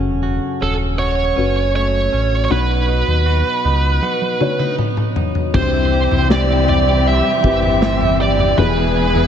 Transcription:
Already playing: F#2 C#3 C#4 F#4 A4
0.05 E1
0.23 F#4
0.61 D#1 C#4 A4
0.99 F#4 C#5
1.36 F#1 C#4 F#4 B4
1.75 A3 C#5
2.13 A1 C#4
2.45 C#5
2.50 B1 B2 F#3 D#4 F#4 B4
2.88 D#4
3.08 D#2
3.26 F#4
3.65 C#2 D#4
4.02 F#4, high tom
4.21 high tom
4.40 C#4 D#4 F#4 C#5, mid tom
4.59 D#4, mid tom
4.78 B3, mid tom
4.97 mid tom
5.16 D#4, floor tom
5.35 floor tom
5.54 C2 G2 C3 E3 G3 C4 E4 G4 C5, kick, floor tom, crash
5.74 E4
5.92 G4
6.11 C2 E4, floor tom
6.30 C4 E4 G4 C5 D5, snare
6.49 E4
6.68 G4 D5, floor tom
6.87 E4
7.06 C3 E5
7.25 E4
7.43 G1 C4 E4 G4 B4, kick
7.63 E4, floor tom
7.82 C4, snare
8.01 E4, floor tom
8.20 G4 D5
8.39 E4, floor tom
8.56 E1 B2 E3 G#3 B3 E4 G#4 B4, floor tom
8.77 E4
8.96 G#4
9.15 E4, floor tom

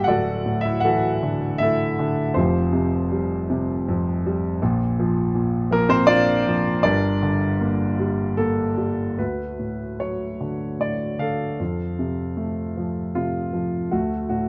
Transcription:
Already playing: A#3
0.04 D1 D2 F#4 F#5
0.08 A4 D5
0.46 A2
0.61 E5
0.65 E4
0.80 F#5
0.84 E3 F#4 A4
1.23 D3
1.58 A3 E4 E5
1.63 A4
1.99 D3
2.34 F1 F2 C4 F4 G4 C5
2.73 C3
3.12 G3
3.50 C3
3.88 F2
4.26 G3
4.62 A#1 A#2
5.00 F3
5.35 A#2
5.71 F3 A#3 A#4
5.89 C4 C5
6.07 A#2 D4 F4 D5
6.47 F3
6.83 G1 G2 D4 G4 A#4 D5
7.23 D3
7.61 A#3
8.00 G3
8.37 A#3 A4
8.78 G3
9.18 D2 F#4 B4
9.59 A2
9.99 F#3 C#5
10.41 D3
10.79 A2 D5
11.19 D3 A4 F5
11.60 F2
11.99 C3
12.37 A3
12.77 F3
13.15 C3 F4
13.53 F3
13.91 D2 A3 F#4
14.29 A2 F#4

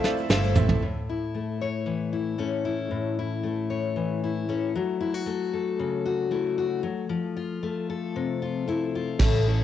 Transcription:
Already playing: F1 F2 A3 E4 F4 C5 E5
0.04 A3 C4 E4 F4 A4 C5 D5, snare, shaker
0.17 shaker
0.29 G1 F3 A3 C4 E4 F4 A4 C5 E5, snare, shaker
0.43 shaker
0.55 A1 A3 C4 E4 F4 A4 C5 E5, mid tom, shaker
0.69 floor tom
0.82 A2
1.09 E4
1.35 A3
1.61 C#5
1.86 E3
2.13 E4
2.38 A3 C#4
2.65 E4
2.91 A2
3.19 E4
3.43 A3
3.70 C#5
3.96 E3
4.24 E4
4.49 A3 C#4
4.75 F#3
5.01 E4
5.14 F#4
5.26 A3
5.53 A4
5.79 C#3
6.05 F#4
6.31 A3 E4
6.58 F#4
6.83 F#3
7.09 F3
7.37 F4
7.63 A3
7.90 A4
8.16 C3
8.42 F4
8.68 A3 E4
8.95 F4
9.19 A1 A2 E3 A3 C#4 E4 A4, kick, snare, crash
9.46 A3 C#4 E4 A4

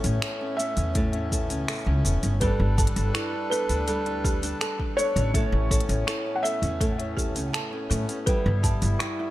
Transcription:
Already playing: A2 A3 B3 C#4 A4 C#5
0.04 A1 C#4, closed hi-hat, shaker
0.22 A4, finger snap, closed hi-hat, shaker
0.41 C#4
0.57 B3 E5, shaker
0.77 E2 C#4, closed hi-hat, shaker
0.95 A2 A4, kick, closed hi-hat, shaker
1.13 C#4, closed hi-hat
1.32 A4, kick, shaker
1.50 C#2 C#4, closed hi-hat, shaker
1.68 A4, finger snap, closed hi-hat, shaker
1.72 shaker
1.75 shaker
1.78 shaker
1.81 shaker
1.86 C#2 C#4
2.05 E1 B3, closed hi-hat, shaker
2.23 G1 C#4, closed hi-hat, shaker
2.40 G3 D4 A4 B4, kick, closed hi-hat, shaker
2.60 G1 D4
2.78 A4 A5, kick, closed hi-hat, shaker
2.87 closed hi-hat
2.96 G1 D4, closed hi-hat, shaker
3.14 E4 A4, finger snap, closed hi-hat, shaker
3.33 D4
3.50 B3 A4 B4, shaker
3.69 D2 D4, closed hi-hat, shaker
3.88 G3 A4, closed hi-hat, shaker
4.06 D4, closed hi-hat
4.24 G4 A4, kick, shaker
4.43 D4, closed hi-hat, shaker
4.61 A4 A5, finger snap, closed hi-hat, shaker
4.79 D4, kick
4.97 B3 A4 C#5, shaker
5.16 A1 D4, closed hi-hat, shaker
5.34 A2 A3 B3 C#4 A4 E5, kick, closed hi-hat, shaker
5.52 A1 C#4
5.71 A4 C#5, kick, closed hi-hat, shaker
5.80 closed hi-hat
5.89 A1 C#4, closed hi-hat, shaker
6.07 E4 A4, finger snap, closed hi-hat, shaker
6.26 C#4
6.36 F#5
6.43 B3 A4 E5, shaker
6.62 E2 C#4, closed hi-hat, shaker
6.80 A2 A4, kick, closed hi-hat, shaker
6.99 C#4, closed hi-hat
7.17 G4 A4, kick, shaker
7.35 C#2 C#4, closed hi-hat, shaker
7.53 A4 A5, finger snap, closed hi-hat, shaker
7.73 C#4
7.90 A2 B3 A4, closed hi-hat, shaker
8.09 C#4, closed hi-hat, shaker
8.26 G3 B3 E4 G4 A4 B4, kick, closed hi-hat, shaker
8.46 G1 E4
8.63 G4 A5, kick, closed hi-hat, shaker
8.82 G1 E4, closed hi-hat, shaker
8.99 E4 G4, finger snap, closed hi-hat, shaker
9.20 E4

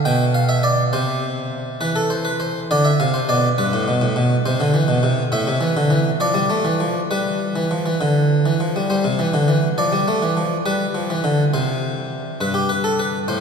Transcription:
0.05 B2 G5
0.34 F5
0.49 E5
0.63 D5
0.93 C3 C5
1.81 E3 B4
1.96 A4
2.10 C5
2.25 B4
2.40 C5
2.71 D3 D5
2.85 E5
3.00 C3 F5
3.14 C5
3.29 B2 D5
3.58 G2 B4
3.73 A2
3.88 B2
4.01 A2
4.16 B2
4.46 C3 C5
4.60 D3
4.74 E3
4.88 B2
5.03 C3
5.32 A2 E5
5.47 C3
5.61 E3
5.77 D3
5.90 E3
6.20 F3 D5
6.34 G3
6.50 A3
6.65 E3
6.80 F3
7.11 G3 B4
7.56 E3
7.71 F3
7.86 E3
8.01 D3
8.46 E3
8.60 F3
8.76 G3
8.90 G3 C5
9.04 C3
9.19 E3
9.34 D3
9.48 E3
9.78 F3 D5
9.92 G3
10.08 A3
10.22 E3
10.37 F3
10.66 G3 B4
10.95 F3
11.10 E3
11.24 D3
11.54 C3 C5
12.41 G2 B4
12.54 G4
12.69 B4
12.84 A4
12.99 B4
13.28 A2 C5

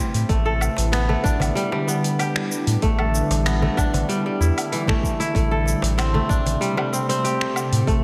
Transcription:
Already playing: C3 G3 A3 C4 D4 E4 G4 B4
0.14 A2, open hi-hat, cabasa
0.29 A1 D3 A3, kick, open hi-hat, cabasa
0.45 A4, darbuka tek
0.61 G3, darbuka ka, cabasa, low woodblock
0.77 A1, open hi-hat, darbuka tek, cabasa
0.92 B3, finger snap, open hi-hat, darbuka ka, cabasa
1.09 A3, darbuka tek, darbuka dum
1.24 A1 D4, kick, cabasa
1.40 A1, open hi-hat, darbuka ka, darbuka tek, darbuka dum, cabasa, low woodblock
1.55 G3, open hi-hat, cabasa
1.72 G3, darbuka tek
1.88 B3, cabasa
2.04 open hi-hat, cabasa
2.19 G4, open hi-hat, cabasa, low woodblock
2.36 finger snap
2.52 cabasa
2.67 A2, open hi-hat, cabasa
2.82 A1 A3, kick, open hi-hat, cabasa
2.99 A4, darbuka tek, low woodblock
3.14 darbuka ka, cabasa
3.30 A1, open hi-hat, darbuka tek, cabasa
3.46 B3, finger snap, open hi-hat, darbuka ka, cabasa
3.62 A3, darbuka tek, darbuka dum
3.77 A1 D4, kick, cabasa, low woodblock
3.93 A1, open hi-hat, darbuka ka, darbuka tek, darbuka dum, cabasa
4.09 G3, open hi-hat, cabasa
4.26 G3
4.40 E2 E4, darbuka ka, cabasa
4.58 open hi-hat, cabasa, low woodblock
4.72 E3, open hi-hat, cabasa
4.87 A1 A3, finger snap, kick, darbuka dum
5.03 kick, darbuka ka, cabasa
5.20 E4, open hi-hat, cabasa
5.35 A1 C3 A3, kick, open hi-hat, cabasa
5.51 A4, darbuka tek
5.59 A3
5.66 darbuka ka, cabasa
5.82 A1, open hi-hat, darbuka tek, cabasa
5.98 C4, finger snap, open hi-hat, darbuka ka, cabasa, low woodblock
6.14 A3, darbuka tek, darbuka dum
6.29 A1 D4, kick, cabasa
6.46 A1, open hi-hat, darbuka ka, darbuka tek, darbuka dum, cabasa
6.61 G3, open hi-hat, cabasa
6.77 G3, darbuka tek, low woodblock
6.93 C4, cabasa
7.09 C4, open hi-hat, cabasa
7.15 E4
7.24 G4, open hi-hat, cabasa
7.41 finger snap
7.56 cabasa, low woodblock
7.61 B4
7.72 A2, open hi-hat, cabasa
7.87 A1 A3, kick, open hi-hat, cabasa

